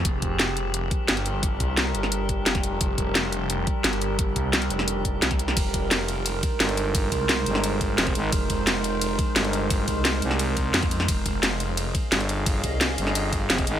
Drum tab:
RD |----------------|----------------|----------------|----------------|
HH |x-x-x-x-x-x-xxx-|x-x-x-x-x-x-xxx-|x-x-x-x-x-x-xxx-|x-x-xxx-x-x-xxx-|
SD |----o-------o---|----o--o----oo--|----o-------o---|----o--o----oo-o|
BD |o-o-------o-----|o-o-------o--o--|o-o-------o-----|o-o-------o--o--|

RD |x-x-x-x-x-x-x-x-|x-x-x-x-x-x-x-x-|x-x-x-x-x-x-x-x-|x-x-x-x-x-x-x-x-|
HH |x-x-x-x-x-x-xxx-|x-x-x-x-x-x-xxx-|x-x-x-x-x-x-xxx-|x-x-x-x-x-x-xxx-|
SD |----o-------o---|----o--o----oo--|----o-------o---|----o--o----oo-o|
BD |o-o-------o-----|o-o-------o--o--|o-o-------o-----|o-o-------o--o--|

RD |x-x-x-x-x-x-x-x-|x-x-x-x-x-x-x-x-|
HH |x-x-x-x-x-x-xxx-|x-x-x-x-x-x-xxx-|
SD |----o-------o---|----o--o----oo--|
BD |o-o-------o-----|o-o-------o--o--|